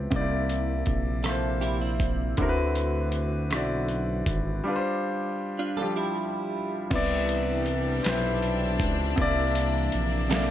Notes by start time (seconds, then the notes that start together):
Already playing: B3 C4 E4 D5
0.10 C2 C3 A#3 D#4, kick, closed hi-hat
0.16 D5
0.21 E4
0.49 closed hi-hat
0.86 A#1, kick, closed hi-hat
1.23 C3 A#3 E4 A4, cross-stick, closed hi-hat
1.29 C5
1.61 E4 G4, closed hi-hat
1.81 C4 E4
2.00 kick, closed hi-hat
2.37 D2 D3 C4 E4, kick, closed hi-hat
2.41 F#4 A#4
2.49 B4
2.75 closed hi-hat
3.12 closed hi-hat
3.50 B1 D3 C4 E4 F#4, cross-stick, closed hi-hat
3.56 D5
3.88 closed hi-hat
4.26 G#1, kick, closed hi-hat
4.64 G3 D4 F4
4.69 B4
4.76 C5
5.59 D4 F4
5.77 F3 G3 D4 F4 A4
5.82 G4
5.96 E4 G4
6.90 C2 C3 E3 G3 B3 D4 E4, kick, closed hi-hat, crash
6.96 D5
7.29 closed hi-hat
7.66 closed hi-hat
8.03 B1 C4 E4 B4, snare, closed hi-hat
8.09 C5
8.42 closed hi-hat
8.80 C#2, kick, closed hi-hat
9.16 C2 C3 E3 A#3 E4, kick, closed hi-hat
9.21 D5
9.55 closed hi-hat
9.92 A#1, closed hi-hat
10.29 C3 A#3 E4 A4, snare, closed hi-hat
10.35 D5